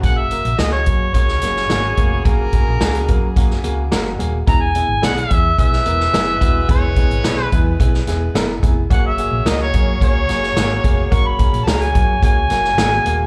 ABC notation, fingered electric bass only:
X:1
M:4/4
L:1/16
Q:1/4=108
K:F#mix
V:1 name="Fingered electric bass" clef=bass
F,,,3 A,,, C,,2 F,,2 C,,2 F,,,2 G,,,2 ^E,,,2 | F,,,3 A,,, C,,2 F,,4 C,,2 F,,,2 D,,,2 | E,,,3 G,,, B,,,2 E,,2 B,,,2 E,,,2 F,,,2 D,,,2 | E,,,3 G,,, B,,,2 E,,2 B,,,2 E,,,2 F,,,2 ^E,,,2 |
F,,,3 A,,, C,,2 F,,2 C,,2 F,,,2 G,,,2 ^E,,,2 | F,,,3 A,,, C,,2 F,,2 C,,2 F,,,2 G,,,2 D,,,2 |]